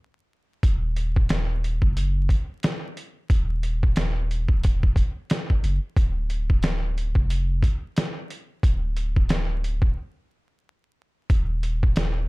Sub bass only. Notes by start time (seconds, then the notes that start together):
0.63 D#1
1.82 F#1
3.30 D#1
4.49 D#1
5.63 F#1
5.97 D1
7.15 F1
8.63 D1
9.82 D1
11.30 D#1